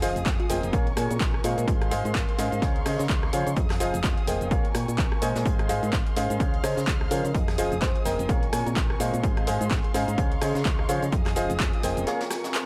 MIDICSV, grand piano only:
0, 0, Header, 1, 2, 480
1, 0, Start_track
1, 0, Key_signature, -4, "major"
1, 0, Tempo, 472441
1, 1703, Time_signature, 4, 2, 24, 8
1, 12860, End_track
2, 0, Start_track
2, 0, Title_t, "Grand piano"
2, 0, Program_c, 0, 0
2, 21, Note_on_c, 0, 53, 97
2, 21, Note_on_c, 0, 68, 89
2, 21, Note_on_c, 0, 75, 88
2, 21, Note_on_c, 0, 77, 109
2, 22, Note_on_c, 0, 72, 89
2, 147, Note_off_c, 0, 53, 0
2, 147, Note_off_c, 0, 68, 0
2, 147, Note_off_c, 0, 72, 0
2, 147, Note_off_c, 0, 75, 0
2, 147, Note_off_c, 0, 77, 0
2, 502, Note_on_c, 0, 58, 86
2, 502, Note_on_c, 0, 68, 80
2, 502, Note_on_c, 0, 72, 80
2, 502, Note_on_c, 0, 75, 79
2, 502, Note_on_c, 0, 79, 95
2, 718, Note_off_c, 0, 58, 0
2, 718, Note_off_c, 0, 68, 0
2, 718, Note_off_c, 0, 72, 0
2, 718, Note_off_c, 0, 75, 0
2, 718, Note_off_c, 0, 79, 0
2, 743, Note_on_c, 0, 58, 91
2, 743, Note_on_c, 0, 68, 82
2, 743, Note_on_c, 0, 70, 80
2, 743, Note_on_c, 0, 73, 85
2, 743, Note_on_c, 0, 77, 97
2, 867, Note_off_c, 0, 58, 0
2, 867, Note_off_c, 0, 77, 0
2, 868, Note_off_c, 0, 68, 0
2, 868, Note_off_c, 0, 70, 0
2, 868, Note_off_c, 0, 73, 0
2, 982, Note_on_c, 0, 68, 75
2, 982, Note_on_c, 0, 73, 77
2, 983, Note_on_c, 0, 58, 84
2, 983, Note_on_c, 0, 70, 75
2, 983, Note_on_c, 0, 80, 89
2, 1107, Note_off_c, 0, 68, 0
2, 1107, Note_off_c, 0, 70, 0
2, 1107, Note_off_c, 0, 73, 0
2, 1108, Note_off_c, 0, 58, 0
2, 1108, Note_off_c, 0, 80, 0
2, 1463, Note_on_c, 0, 56, 82
2, 1463, Note_on_c, 0, 68, 75
2, 1463, Note_on_c, 0, 72, 73
2, 1463, Note_on_c, 0, 75, 74
2, 1463, Note_on_c, 0, 77, 90
2, 1919, Note_off_c, 0, 56, 0
2, 1919, Note_off_c, 0, 68, 0
2, 1919, Note_off_c, 0, 72, 0
2, 1919, Note_off_c, 0, 75, 0
2, 1919, Note_off_c, 0, 77, 0
2, 1942, Note_on_c, 0, 56, 99
2, 1942, Note_on_c, 0, 68, 89
2, 1942, Note_on_c, 0, 72, 92
2, 1942, Note_on_c, 0, 77, 108
2, 1943, Note_on_c, 0, 75, 91
2, 2125, Note_off_c, 0, 56, 0
2, 2126, Note_off_c, 0, 68, 0
2, 2126, Note_off_c, 0, 72, 0
2, 2126, Note_off_c, 0, 75, 0
2, 2126, Note_off_c, 0, 77, 0
2, 2421, Note_on_c, 0, 61, 103
2, 2422, Note_on_c, 0, 68, 93
2, 2422, Note_on_c, 0, 72, 90
2, 2422, Note_on_c, 0, 75, 93
2, 2422, Note_on_c, 0, 77, 109
2, 2638, Note_off_c, 0, 61, 0
2, 2638, Note_off_c, 0, 68, 0
2, 2638, Note_off_c, 0, 72, 0
2, 2638, Note_off_c, 0, 75, 0
2, 2638, Note_off_c, 0, 77, 0
2, 2662, Note_on_c, 0, 72, 73
2, 2662, Note_on_c, 0, 73, 74
2, 2663, Note_on_c, 0, 61, 80
2, 2663, Note_on_c, 0, 68, 75
2, 2663, Note_on_c, 0, 77, 90
2, 2787, Note_off_c, 0, 61, 0
2, 2787, Note_off_c, 0, 68, 0
2, 2787, Note_off_c, 0, 72, 0
2, 2787, Note_off_c, 0, 73, 0
2, 2787, Note_off_c, 0, 77, 0
2, 2903, Note_on_c, 0, 61, 78
2, 2903, Note_on_c, 0, 68, 70
2, 2903, Note_on_c, 0, 72, 72
2, 2903, Note_on_c, 0, 73, 72
2, 2903, Note_on_c, 0, 75, 88
2, 3027, Note_off_c, 0, 61, 0
2, 3027, Note_off_c, 0, 68, 0
2, 3027, Note_off_c, 0, 72, 0
2, 3028, Note_off_c, 0, 73, 0
2, 3028, Note_off_c, 0, 75, 0
2, 3383, Note_on_c, 0, 53, 90
2, 3383, Note_on_c, 0, 68, 84
2, 3383, Note_on_c, 0, 72, 83
2, 3383, Note_on_c, 0, 73, 84
2, 3383, Note_on_c, 0, 77, 100
2, 3507, Note_off_c, 0, 53, 0
2, 3507, Note_off_c, 0, 68, 0
2, 3507, Note_off_c, 0, 72, 0
2, 3507, Note_off_c, 0, 77, 0
2, 3508, Note_off_c, 0, 73, 0
2, 3863, Note_on_c, 0, 53, 101
2, 3863, Note_on_c, 0, 68, 90
2, 3863, Note_on_c, 0, 72, 89
2, 3864, Note_on_c, 0, 75, 88
2, 3864, Note_on_c, 0, 77, 109
2, 3988, Note_off_c, 0, 53, 0
2, 3988, Note_off_c, 0, 68, 0
2, 3988, Note_off_c, 0, 72, 0
2, 3988, Note_off_c, 0, 75, 0
2, 3988, Note_off_c, 0, 77, 0
2, 4341, Note_on_c, 0, 79, 93
2, 4342, Note_on_c, 0, 58, 87
2, 4342, Note_on_c, 0, 68, 78
2, 4342, Note_on_c, 0, 72, 77
2, 4342, Note_on_c, 0, 75, 80
2, 4558, Note_off_c, 0, 58, 0
2, 4558, Note_off_c, 0, 68, 0
2, 4558, Note_off_c, 0, 72, 0
2, 4558, Note_off_c, 0, 75, 0
2, 4558, Note_off_c, 0, 79, 0
2, 4582, Note_on_c, 0, 58, 91
2, 4582, Note_on_c, 0, 68, 82
2, 4582, Note_on_c, 0, 70, 80
2, 4582, Note_on_c, 0, 73, 81
2, 4582, Note_on_c, 0, 77, 97
2, 4707, Note_off_c, 0, 58, 0
2, 4707, Note_off_c, 0, 68, 0
2, 4707, Note_off_c, 0, 70, 0
2, 4707, Note_off_c, 0, 73, 0
2, 4707, Note_off_c, 0, 77, 0
2, 5302, Note_on_c, 0, 56, 89
2, 5302, Note_on_c, 0, 72, 81
2, 5302, Note_on_c, 0, 75, 83
2, 5302, Note_on_c, 0, 80, 98
2, 5303, Note_on_c, 0, 68, 82
2, 5758, Note_off_c, 0, 56, 0
2, 5758, Note_off_c, 0, 68, 0
2, 5758, Note_off_c, 0, 72, 0
2, 5758, Note_off_c, 0, 75, 0
2, 5758, Note_off_c, 0, 80, 0
2, 5782, Note_on_c, 0, 56, 94
2, 5782, Note_on_c, 0, 68, 88
2, 5782, Note_on_c, 0, 72, 88
2, 5782, Note_on_c, 0, 75, 88
2, 5782, Note_on_c, 0, 77, 106
2, 5965, Note_off_c, 0, 56, 0
2, 5965, Note_off_c, 0, 68, 0
2, 5965, Note_off_c, 0, 72, 0
2, 5965, Note_off_c, 0, 75, 0
2, 5965, Note_off_c, 0, 77, 0
2, 6262, Note_on_c, 0, 61, 96
2, 6262, Note_on_c, 0, 75, 90
2, 6262, Note_on_c, 0, 77, 108
2, 6263, Note_on_c, 0, 68, 91
2, 6263, Note_on_c, 0, 72, 88
2, 6478, Note_off_c, 0, 61, 0
2, 6478, Note_off_c, 0, 75, 0
2, 6478, Note_off_c, 0, 77, 0
2, 6479, Note_off_c, 0, 68, 0
2, 6479, Note_off_c, 0, 72, 0
2, 6503, Note_on_c, 0, 61, 80
2, 6503, Note_on_c, 0, 68, 74
2, 6503, Note_on_c, 0, 72, 73
2, 6503, Note_on_c, 0, 73, 75
2, 6503, Note_on_c, 0, 77, 88
2, 6627, Note_off_c, 0, 61, 0
2, 6627, Note_off_c, 0, 68, 0
2, 6627, Note_off_c, 0, 73, 0
2, 6627, Note_off_c, 0, 77, 0
2, 6628, Note_off_c, 0, 72, 0
2, 6742, Note_on_c, 0, 61, 76
2, 6742, Note_on_c, 0, 68, 72
2, 6742, Note_on_c, 0, 72, 70
2, 6742, Note_on_c, 0, 73, 71
2, 6742, Note_on_c, 0, 75, 87
2, 6867, Note_off_c, 0, 61, 0
2, 6867, Note_off_c, 0, 68, 0
2, 6867, Note_off_c, 0, 72, 0
2, 6867, Note_off_c, 0, 73, 0
2, 6867, Note_off_c, 0, 75, 0
2, 7222, Note_on_c, 0, 53, 90
2, 7222, Note_on_c, 0, 68, 82
2, 7222, Note_on_c, 0, 72, 85
2, 7222, Note_on_c, 0, 73, 83
2, 7223, Note_on_c, 0, 77, 100
2, 7347, Note_off_c, 0, 53, 0
2, 7347, Note_off_c, 0, 68, 0
2, 7347, Note_off_c, 0, 72, 0
2, 7347, Note_off_c, 0, 73, 0
2, 7347, Note_off_c, 0, 77, 0
2, 7703, Note_on_c, 0, 53, 97
2, 7703, Note_on_c, 0, 68, 91
2, 7703, Note_on_c, 0, 72, 91
2, 7703, Note_on_c, 0, 75, 89
2, 7703, Note_on_c, 0, 77, 107
2, 7827, Note_off_c, 0, 53, 0
2, 7827, Note_off_c, 0, 77, 0
2, 7828, Note_off_c, 0, 68, 0
2, 7828, Note_off_c, 0, 72, 0
2, 7828, Note_off_c, 0, 75, 0
2, 8183, Note_on_c, 0, 72, 79
2, 8184, Note_on_c, 0, 58, 88
2, 8184, Note_on_c, 0, 68, 77
2, 8184, Note_on_c, 0, 75, 81
2, 8184, Note_on_c, 0, 79, 95
2, 8399, Note_off_c, 0, 58, 0
2, 8399, Note_off_c, 0, 68, 0
2, 8399, Note_off_c, 0, 72, 0
2, 8399, Note_off_c, 0, 75, 0
2, 8399, Note_off_c, 0, 79, 0
2, 8423, Note_on_c, 0, 58, 88
2, 8423, Note_on_c, 0, 68, 84
2, 8423, Note_on_c, 0, 70, 83
2, 8423, Note_on_c, 0, 73, 83
2, 8423, Note_on_c, 0, 77, 100
2, 8547, Note_off_c, 0, 68, 0
2, 8547, Note_off_c, 0, 70, 0
2, 8547, Note_off_c, 0, 77, 0
2, 8548, Note_off_c, 0, 58, 0
2, 8548, Note_off_c, 0, 73, 0
2, 8662, Note_on_c, 0, 70, 76
2, 8662, Note_on_c, 0, 73, 79
2, 8663, Note_on_c, 0, 58, 84
2, 8663, Note_on_c, 0, 68, 76
2, 8663, Note_on_c, 0, 80, 91
2, 8787, Note_off_c, 0, 58, 0
2, 8787, Note_off_c, 0, 68, 0
2, 8787, Note_off_c, 0, 70, 0
2, 8787, Note_off_c, 0, 73, 0
2, 8787, Note_off_c, 0, 80, 0
2, 9141, Note_on_c, 0, 75, 74
2, 9141, Note_on_c, 0, 77, 89
2, 9142, Note_on_c, 0, 56, 81
2, 9142, Note_on_c, 0, 68, 74
2, 9142, Note_on_c, 0, 72, 74
2, 9598, Note_off_c, 0, 56, 0
2, 9598, Note_off_c, 0, 68, 0
2, 9598, Note_off_c, 0, 72, 0
2, 9598, Note_off_c, 0, 75, 0
2, 9598, Note_off_c, 0, 77, 0
2, 9622, Note_on_c, 0, 56, 98
2, 9622, Note_on_c, 0, 72, 90
2, 9622, Note_on_c, 0, 75, 93
2, 9622, Note_on_c, 0, 77, 109
2, 9623, Note_on_c, 0, 68, 91
2, 9805, Note_off_c, 0, 56, 0
2, 9806, Note_off_c, 0, 68, 0
2, 9806, Note_off_c, 0, 72, 0
2, 9806, Note_off_c, 0, 75, 0
2, 9806, Note_off_c, 0, 77, 0
2, 10103, Note_on_c, 0, 61, 100
2, 10103, Note_on_c, 0, 68, 91
2, 10103, Note_on_c, 0, 72, 92
2, 10103, Note_on_c, 0, 75, 94
2, 10103, Note_on_c, 0, 77, 112
2, 10318, Note_off_c, 0, 61, 0
2, 10319, Note_off_c, 0, 68, 0
2, 10319, Note_off_c, 0, 72, 0
2, 10319, Note_off_c, 0, 75, 0
2, 10319, Note_off_c, 0, 77, 0
2, 10342, Note_on_c, 0, 61, 80
2, 10342, Note_on_c, 0, 73, 76
2, 10342, Note_on_c, 0, 77, 89
2, 10343, Note_on_c, 0, 68, 76
2, 10343, Note_on_c, 0, 72, 75
2, 10467, Note_off_c, 0, 61, 0
2, 10467, Note_off_c, 0, 68, 0
2, 10467, Note_off_c, 0, 73, 0
2, 10467, Note_off_c, 0, 77, 0
2, 10468, Note_off_c, 0, 72, 0
2, 10583, Note_on_c, 0, 61, 78
2, 10583, Note_on_c, 0, 68, 72
2, 10583, Note_on_c, 0, 72, 72
2, 10583, Note_on_c, 0, 73, 73
2, 10583, Note_on_c, 0, 75, 87
2, 10708, Note_off_c, 0, 61, 0
2, 10708, Note_off_c, 0, 68, 0
2, 10708, Note_off_c, 0, 72, 0
2, 10708, Note_off_c, 0, 73, 0
2, 10708, Note_off_c, 0, 75, 0
2, 11063, Note_on_c, 0, 73, 81
2, 11064, Note_on_c, 0, 53, 89
2, 11064, Note_on_c, 0, 68, 83
2, 11064, Note_on_c, 0, 72, 83
2, 11064, Note_on_c, 0, 77, 101
2, 11188, Note_off_c, 0, 53, 0
2, 11188, Note_off_c, 0, 68, 0
2, 11188, Note_off_c, 0, 72, 0
2, 11188, Note_off_c, 0, 73, 0
2, 11188, Note_off_c, 0, 77, 0
2, 11543, Note_on_c, 0, 53, 98
2, 11543, Note_on_c, 0, 68, 88
2, 11543, Note_on_c, 0, 72, 90
2, 11543, Note_on_c, 0, 75, 88
2, 11543, Note_on_c, 0, 77, 105
2, 11668, Note_off_c, 0, 53, 0
2, 11668, Note_off_c, 0, 68, 0
2, 11668, Note_off_c, 0, 72, 0
2, 11668, Note_off_c, 0, 75, 0
2, 11668, Note_off_c, 0, 77, 0
2, 12023, Note_on_c, 0, 58, 86
2, 12023, Note_on_c, 0, 68, 76
2, 12023, Note_on_c, 0, 72, 78
2, 12023, Note_on_c, 0, 75, 79
2, 12023, Note_on_c, 0, 79, 97
2, 12239, Note_off_c, 0, 58, 0
2, 12239, Note_off_c, 0, 68, 0
2, 12239, Note_off_c, 0, 72, 0
2, 12239, Note_off_c, 0, 75, 0
2, 12239, Note_off_c, 0, 79, 0
2, 12263, Note_on_c, 0, 58, 88
2, 12263, Note_on_c, 0, 68, 84
2, 12263, Note_on_c, 0, 70, 84
2, 12263, Note_on_c, 0, 73, 82
2, 12263, Note_on_c, 0, 77, 100
2, 12387, Note_off_c, 0, 77, 0
2, 12388, Note_off_c, 0, 58, 0
2, 12388, Note_off_c, 0, 68, 0
2, 12388, Note_off_c, 0, 70, 0
2, 12388, Note_off_c, 0, 73, 0
2, 12860, End_track
0, 0, End_of_file